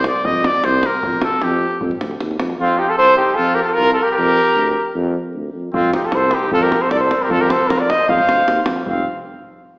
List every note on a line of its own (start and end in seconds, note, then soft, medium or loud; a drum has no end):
0.04 0.27 D5 medium
0.04 davul high medium
0.16 davul high soft
0.25 0.47 F2 loud
0.25 0.48 D#5 medium
0.25 davul low loud
0.35 davul high soft
0.44 0.67 D5 medium
0.44 davul high medium
0.55 davul high soft
0.64 0.86 C2 loud
0.64 0.87 C5 medium
0.64 davul high medium
0.83 1.24 A#4 medium
0.83 davul high medium
0.93 davul high soft
1.03 1.25 F2 medium
1.03 davul low loud
1.13 davul high soft
1.22 1.45 A4 medium
1.22 davul high medium
1.32 davul high soft
1.42 1.65 F2 loud
1.42 1.82 G4 medium
1.42 davul high medium
1.71 davul high soft
1.81 1.93 F2 loud
1.81 davul low medium
1.91 davul high soft
2.01 2.19 D2 medium
2.01 davul high medium
2.11 davul high soft
2.20 2.39 D#2 loud
2.20 davul high medium
2.31 davul high soft
2.40 2.58 F2 medium
2.40 davul high medium
2.50 davul high soft
2.59 2.81 F2 loud
2.59 2.79 C4 medium
2.59 2.80 F4 loud
2.78 2.90 D#4 medium
2.78 2.91 G4 medium
2.88 2.96 F4 medium
2.88 2.97 A4 medium
2.97 3.21 C2 medium
2.97 3.15 A4 loud
2.97 3.17 C5 loud
3.16 3.36 D#4 medium
3.16 3.36 G4 medium
3.34 3.60 F2 loud
3.34 3.56 F4 medium
3.34 3.56 A4 loud
3.54 3.61 G4 medium
3.54 3.63 A#4 medium
3.62 3.73 F4 medium
3.62 3.75 A4 medium
3.73 3.92 F4 loud
3.73 3.93 A#4 loud
3.77 3.99 C2 loud
3.93 4.04 F4 medium
3.93 4.05 A4 medium
4.03 4.11 G4 medium
4.03 4.13 A#4 medium
4.11 4.88 G4 medium
4.11 4.90 A#4 loud
4.18 4.39 F2 loud
4.56 4.77 D2 loud
4.95 5.17 F2 loud
5.35 5.52 D2 medium
5.53 5.71 F2 medium
5.73 5.95 F2 loud
5.73 5.92 C4 medium
5.73 5.92 F4 medium
5.73 davul low loud
5.84 davul high soft
5.93 6.06 D#4 medium
5.93 6.07 G4 medium
5.93 davul high medium
6.03 6.17 F4 medium
6.03 6.17 A4 medium
6.03 davul high soft
6.11 6.33 C2 loud
6.11 6.34 A4 medium
6.11 6.35 C5 medium
6.11 davul high medium
6.31 6.52 D#4 medium
6.31 6.52 G4 medium
6.31 davul high medium
6.51 6.73 F2 loud
6.51 6.65 F4 loud
6.51 6.64 A4 loud
6.51 davul low medium
6.62 6.84 G4 medium
6.62 6.83 A#4 medium
6.62 davul high soft
6.72 davul high medium
6.81 6.92 A4 medium
6.81 6.92 C5 medium
6.81 davul high soft
6.90 7.13 C2 loud
6.90 7.02 A4 medium
6.90 6.99 D5 loud
6.90 davul high medium
7.00 7.25 A4 medium
7.00 7.23 C5 medium
7.11 davul high medium
7.22 7.32 G4 medium
7.22 7.32 A#4 medium
7.29 7.51 F2 loud
7.29 7.43 F4 medium
7.29 7.42 A4 loud
7.29 davul low medium
7.40 7.54 G4 medium
7.40 7.51 A#4 medium
7.40 davul high soft
7.50 7.73 A4 medium
7.50 7.69 C5 medium
7.50 davul high medium
7.61 davul high soft
7.67 7.91 F2 loud
7.67 7.80 A#4 loud
7.67 davul high medium
7.72 7.83 F4 medium
7.78 7.93 A#4 medium
7.78 7.91 D5 loud
7.90 8.10 C5 medium
7.90 8.08 D#5 loud
7.90 davul high medium
8.08 8.20 F2 loud
8.08 8.65 C5 medium
8.08 8.64 F5 loud
8.08 davul low loud
8.19 davul high soft
8.29 8.46 D2 medium
8.29 davul high medium
8.47 8.65 D#2 medium
8.47 davul high medium
8.56 davul high soft
8.66 8.84 F2 medium
8.66 davul high medium
8.76 davul high soft
8.86 9.05 F1 loud
8.86 9.06 C4 medium
8.86 9.06 F5 medium
8.86 davul low medium